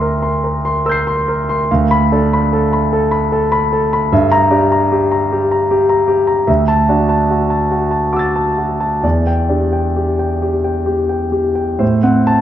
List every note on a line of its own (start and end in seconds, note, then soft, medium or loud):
0.00 1.66 D2 soft
0.00 0.44 A#4 soft
0.00 1.72 E5 soft
0.00 0.22 C6 soft
0.22 0.56 C6 soft
0.44 0.77 A#4 soft
0.65 0.99 C6 soft
0.86 1.19 A#4 soft
0.86 1.66 E6 soft
0.86 1.68 G6 soft
0.92 1.69 C7 soft
1.07 1.41 C6 soft
1.28 1.62 A#4 soft
1.49 1.70 C6 soft
1.71 4.08 D2 soft
1.71 2.03 F5 soft
1.91 2.23 B5 medium
2.12 2.75 D4 soft
2.12 2.43 A4 soft
2.33 2.64 B5 soft
2.53 2.83 A4 soft
2.73 3.04 B5 soft
2.93 3.24 A4 soft
3.11 3.44 B5 soft
3.32 3.64 A4 soft
3.52 3.84 B5 soft
3.73 4.04 A4 soft
3.93 4.12 B5 soft
4.12 6.45 G2 medium
4.12 4.43 E5 soft
4.32 4.63 A#5 medium
4.51 5.15 D4 soft
4.51 4.83 G4 soft
4.72 5.03 A#5 soft
4.92 5.23 G4 soft
5.11 5.43 A#5 soft
5.32 5.63 G4 soft
5.51 5.82 A#5 soft
5.71 6.01 G4 soft
5.89 6.20 A#5 soft
6.08 6.40 G4 soft
6.27 6.48 A#5 soft
6.47 8.99 D2 soft
6.47 6.80 E5 soft
6.68 7.01 A5 medium
6.89 7.55 D4 soft
6.89 7.22 F#4 soft
7.09 7.42 A5 soft
7.30 7.63 F#4 soft
7.50 7.84 A5 soft
7.71 8.05 F#4 soft
7.91 8.26 A5 soft
8.13 8.49 F#4 soft
8.13 8.99 D6 soft
8.13 9.01 E6 soft
8.19 9.02 A6 soft
8.36 8.72 A5 soft
8.58 8.94 F#4 soft
8.80 9.04 A5 soft
9.03 11.77 E2 soft
9.03 9.41 D5 soft
9.27 9.64 G5 soft
9.49 10.23 D4 soft
9.49 9.86 G4 soft
9.73 10.10 G5 soft
9.96 10.33 G4 soft
10.19 10.56 G5 soft
10.42 10.78 G4 soft
10.64 11.01 G5 soft
10.86 11.24 G4 soft
11.09 11.47 G5 soft
11.32 11.71 G4 soft
11.55 11.80 G5 soft
11.79 12.41 A2 soft
11.79 12.18 C5 soft
12.03 12.41 C4 soft
12.03 12.41 F#5 soft
12.27 12.41 A5 medium